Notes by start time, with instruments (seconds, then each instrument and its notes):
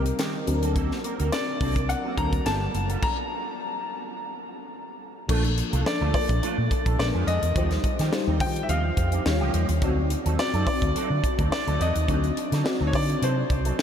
Already playing: fingered electric bass C2, fm electric piano G3 C4 D#4 A#4
0.05 muted clean electric guitar stroke, closed hi-hat
0.18 clean electric guitar D#3 A#3 C4 G4, snare, closed hi-hat
0.34 muted clean electric guitar stroke
0.46 fingered electric bass D2, fm electric piano F#3 C4 D4 A4, muted clean electric guitar stroke, closed hi-hat
0.54 fm electric piano A#4
0.62 clean electric guitar A#3 C4 F#4 A4, closed hi-hat
0.75 clean electric guitar A#3 C4 F#4 A4, kick, closed hi-hat
0.91 snare
1.04 clean electric guitar A#3 C4 F#4 A#4, closed hi-hat
1.19 fingered electric bass D2, clean electric guitar A#3 C4 F#4 A#4, closed hi-hat
1.32 grand piano D5, snare, closed hi-hat
1.48 muted clean electric guitar stroke
1.61 fingered electric bass C2, clean electric guitar A#3 C4 F#4 A4, kick, open hi-hat
1.76 muted clean electric guitar stroke, kick, closed hi-hat
1.89 grand piano F#5, muted clean electric guitar stroke, closed hi-hat
2.04 clean electric guitar A#3 C4 F#4 A4
2.17 fingered electric bass D2, fm electric piano F#3 C4 D4 A#4, clean electric guitar A#3 C4 F#4 A4, grand piano A#5, kick, closed hi-hat
2.33 muted clean electric guitar stroke, kick, closed hi-hat
2.45 fingered electric bass G1, fm electric piano G3 B3 F4 A4, clean electric guitar G3 B3 F4 A4, grand piano A5, snare, closed hi-hat
2.61 muted clean electric guitar stroke
2.74 fingered electric bass F#1, muted clean electric guitar stroke, closed hi-hat
2.89 clean electric guitar G3 B3 F4 A4, closed hi-hat
3.03 grand piano A#5, kick, crash
5.28 fingered electric bass A#1, fm electric piano F3 A#3 D4 A4, clean electric guitar A3 D4 F4 A4, kick, crash
5.44 muted clean electric guitar stroke, closed hi-hat
5.57 muted clean electric guitar stroke, closed hi-hat
5.72 fingered electric bass C2, clean electric guitar A3 D4 F4 A4, closed hi-hat
5.85 fm electric piano F3 A#3 D4 A4, grand piano D5, muted clean electric guitar stroke, snare
6.01 fingered electric bass D2, clean electric guitar A3 D4 F4 A4
6.13 fm electric piano F3 A#3 D4 A4, grand piano D5, muted clean electric guitar stroke, kick, open hi-hat
6.29 fingered electric bass A#1, muted clean electric guitar stroke, kick, closed hi-hat
6.42 clean electric guitar A3 D4 F4 A4, closed hi-hat
6.57 fingered electric bass A#2, muted clean electric guitar stroke
6.70 muted clean electric guitar stroke, kick, closed hi-hat
6.85 fingered electric bass A#1, clean electric guitar A3 D4 F4 A4, kick, closed hi-hat
6.98 fingered electric bass A#1, fm electric piano G#3 B3 D4 A#4, grand piano D5, muted clean electric guitar stroke, snare
7.14 fingered electric bass F2, clean electric guitar F3 B3 D4 G#4
7.27 fingered electric bass F2, clean electric guitar F3 B3 D4 G#4, grand piano D#5, closed hi-hat
7.42 fingered electric bass E2, muted clean electric guitar stroke, closed hi-hat
7.55 fingered electric bass D#2, clean electric guitar F3 C4 D#4 G4, fm electric piano F#3 D#4 F4 C5, kick, closed hi-hat
7.62 fm electric piano G3
7.71 muted clean electric guitar stroke, snare, closed hi-hat
7.84 muted clean electric guitar stroke, kick, closed hi-hat
7.99 fingered electric bass D#3, clean electric guitar F3 C4 D#4 G4, snare, closed hi-hat
8.12 fm electric piano G3 D#4 F4 C5, muted clean electric guitar stroke, snare
8.27 fingered electric bass D#2, clean electric guitar F3 C4 D#4 G4
8.40 fingered electric bass D#3, fm electric piano G3 D#4 F4 C5, grand piano G5, muted clean electric guitar stroke, kick, open hi-hat
8.56 muted clean electric guitar stroke, closed hi-hat
8.63 grand piano E5
8.68 fingered electric bass D#2, clean electric guitar F3 C4 D#4 G4, grand piano F5, closed hi-hat
8.84 muted clean electric guitar stroke
8.97 fingered electric bass F2, muted clean electric guitar stroke, kick, closed hi-hat
9.12 clean electric guitar F3 C4 D#4 G4, closed hi-hat
9.25 fingered electric bass D#2, fm electric piano G3 D#4 F4 C#5, muted clean electric guitar stroke, snare
9.40 fingered electric bass C#2, clean electric guitar F3 A#3 C#4 G4
9.53 fingered electric bass E2, clean electric guitar F3 A#3 C#4 G4, closed hi-hat
9.69 fingered electric bass D#2, muted clean electric guitar stroke, closed hi-hat
9.81 fingered electric bass D2, clean electric guitar F#3 C4 D#4 A4, fm electric piano C4 D#4 F#4 D5, kick, closed hi-hat
9.97 muted clean electric guitar stroke
10.10 muted clean electric guitar stroke, closed hi-hat
10.25 fingered electric bass D#2, clean electric guitar F#3 C4 D#4 A4, closed hi-hat
10.38 fm electric piano C4 D#4 F#4 D5, grand piano D5, muted clean electric guitar stroke, snare
10.53 fingered electric bass F#2, clean electric guitar F#3 C4 D#4 A4, closed hi-hat
10.67 fm electric piano C4 D#4 F#4 D5, grand piano D5, kick, open hi-hat
10.82 fingered electric bass D2, muted clean electric guitar stroke, kick, closed hi-hat
10.95 clean electric guitar F#3 C4 D#4 A4, closed hi-hat
11.10 fingered electric bass D3, muted clean electric guitar stroke
11.24 muted clean electric guitar stroke, kick, closed hi-hat
11.39 fingered electric bass D2, clean electric guitar F#3 C4 D#4 A4, kick, closed hi-hat
11.52 grand piano D5, muted clean electric guitar stroke, snare
11.67 fingered electric bass D2, clean electric guitar F#3 C4 D#4 A4, closed hi-hat
11.80 fingered electric bass E2, clean electric guitar F#3 C4 D#4 A4, grand piano D#5, closed hi-hat
11.95 fingered electric bass D#2, muted clean electric guitar stroke, closed hi-hat
12.08 fingered electric bass D2, clean electric guitar F#3 C4 D#4 A4, fm electric piano C4 D4 D#4 F#4, kick, closed hi-hat
12.24 muted clean electric guitar stroke, closed hi-hat
12.37 muted clean electric guitar stroke, closed hi-hat
12.52 fingered electric bass D3, clean electric guitar F#3 C4 D#4 A4, snare, closed hi-hat
12.64 fm electric piano C4 D#4 F#4 D5, muted clean electric guitar stroke, snare
12.80 fingered electric bass D2, clean electric guitar F#3 C4 D#4 A4
12.87 grand piano C#5
12.92 fingered electric bass D3, fm electric piano C4 D#4 F#4 D5, grand piano D5, muted clean electric guitar stroke, kick, open hi-hat
13.09 muted clean electric guitar stroke, closed hi-hat
13.21 fingered electric bass C3, clean electric guitar F#3 C4 D#4 A4, grand piano C5, closed hi-hat
13.37 muted clean electric guitar stroke
13.50 fingered electric bass C2, muted clean electric guitar stroke, kick, closed hi-hat
13.65 clean electric guitar F#3 C4 D#4 A4, closed hi-hat
13.78 muted clean electric guitar stroke, snare